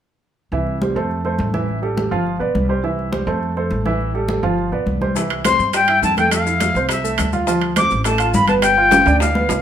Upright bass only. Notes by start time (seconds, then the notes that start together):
0.52 C2
0.96 F2
1.40 A1
2.12 G1
2.40 B1
2.55 C2
3.27 F2
3.71 A1
4.43 G1
4.71 B1
4.86 C2
5.59 G2
6.02 F2
6.75 C2
7.19 D2
7.92 A1
8.34 G1
9.06 D2
9.49 C2